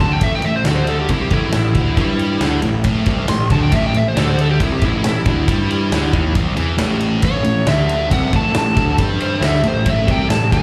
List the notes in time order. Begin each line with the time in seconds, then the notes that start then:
0.00 D2 D3 A5
0.12 G5
0.21 A1 A2 E5, kick, ride
0.35 G5
0.42 A1 A2 E5, ride
0.56 C5
0.64 D2 D3 A4, snare, ride
0.75 C5
0.87 A4, ride
1.01 G4
1.09 C2 C3 E4, kick, ride
1.21 G4
1.30 A1 A2 E4, kick, ride
1.52 A1 A2 E4, snare, ride
1.75 D2 D3, kick, ride
1.97 G2 G3, kick, ride
2.19 ride
2.41 D2 D3, snare, ride
2.62 A1 A2, ride
2.84 A1 A2, kick, ride
3.06 C2 C3, kick, ride
3.28 A1 A2 C6, snare, ride
3.50 D2 D3 A5, kick, ride
3.63 G5
3.72 A1 A2 E5, kick, ride
3.87 G5
3.94 A1 A2 E5, ride
4.08 C5
4.16 D2 D3 A4, snare, ride
4.29 C5
4.38 A4, ride
4.51 G4
4.60 C2 C3 E4, kick, ride
4.72 G4
4.81 A1 A2 E4, kick, ride
5.04 A1 A2 E4, snare, ride
5.25 D2 D3, kick, ride
5.48 G2 G3, kick, ride
5.70 ride
5.92 D2 D3, snare, ride
6.03 snare
6.13 D#2 D#3, kick, ride
6.35 C2 C3, kick, ride
6.56 E2 E3, ride
6.77 A1 A2, snare, ride
7.00 ride
7.22 A1 A2 A3 C#4 E4 A4 C#5, kick, ride
7.44 A1 A2, ride
7.66 D2 D3 E5, snare, ride
7.89 ride
8.10 C2 C3 F#5, kick, ride
8.33 A1 A2 A5, kick, ride
8.53 A1 A2, snare, ride
8.58 A5
8.74 D2 D3, kick, ride
8.98 G2 G3, kick, ride
9.20 C5, ride
9.41 D2 D3 E5, snare, ride
9.54 snare
9.63 A1 A2, ride
9.68 C5
9.85 A1 A2, kick, ride
9.90 E5
10.07 C2 C3, kick, ride
10.11 G5
10.30 A1 A2 A5, snare, ride
10.52 D2 D3 A5, kick, ride